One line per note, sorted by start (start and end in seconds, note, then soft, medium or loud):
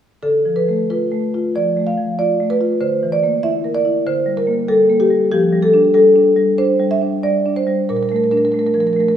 0.23 1.49 D3 soft
0.23 0.54 A4 soft
0.45 0.80 F3 soft
0.56 0.87 B4 medium
0.69 1.02 A3 soft
0.90 1.24 F4 soft
0.90 1.51 B4 soft
1.12 1.45 A3 soft
1.34 1.67 F4 soft
1.55 1.88 F3 soft
1.55 1.85 D5 medium
1.77 2.09 A3 soft
1.87 2.16 F5 medium
1.97 2.30 F3 soft
2.19 2.52 F4 soft
2.19 2.48 D5 medium
2.40 2.73 A3 soft
2.50 2.80 B4 medium
2.61 2.81 F4 soft
2.81 4.02 D3 soft
2.81 3.11 C5 medium
3.03 3.35 E3 soft
3.12 3.42 D5 medium
3.23 3.56 A#3 soft
3.43 3.76 E4 soft
3.43 3.73 E5 medium
3.64 3.97 A#4 soft
3.75 4.04 D5 medium
3.85 4.05 E4 soft
4.07 5.28 D3 soft
4.07 4.36 C5 medium
4.26 4.59 G3 soft
4.37 4.67 A#4 medium
4.47 4.81 A#3 soft
4.68 5.02 G3 soft
4.68 4.98 A4 medium
4.90 5.23 A#3 soft
5.00 5.30 G4 medium
5.10 5.31 G3 soft
5.31 6.54 F3 medium
5.31 5.61 G4 medium
5.53 5.86 G3 soft
5.62 5.93 A4 medium
5.74 6.07 D4 soft
5.94 6.28 G3 soft
5.94 6.55 A4 medium
6.16 6.49 D4 soft
6.36 6.70 G3 soft
6.58 6.92 D4 soft
6.58 6.89 C5 medium
6.80 7.14 G3 soft
6.91 7.21 E5 medium
7.02 7.36 D4 soft
7.23 7.58 G3 soft
7.23 7.54 D5 medium
7.46 7.80 D4 soft
7.56 7.87 C5 medium
7.67 7.88 G3 soft
7.89 9.15 A#2 soft
7.89 7.96 A#4 medium
7.96 8.03 A#4 soft
8.03 8.09 A#4 soft
8.09 8.45 A3 soft
8.09 8.16 A#4 soft
8.16 8.24 A#4 soft
8.24 8.31 A#4 soft
8.31 8.66 D4 soft
8.31 8.37 A#4 soft
8.37 8.45 A#4 soft
8.45 8.52 A#4 soft
8.52 8.88 A3 soft
8.52 8.59 A#4 soft
8.59 8.66 A#4 soft
8.66 8.74 A#4 soft
8.74 9.09 F3 soft
8.74 8.80 A#4 soft
8.80 8.87 A#4 soft
8.87 8.93 A#4 soft
8.93 9.17 A3 soft
8.93 9.00 A#4 soft
9.00 9.09 A#4 soft
9.09 9.17 A#4 soft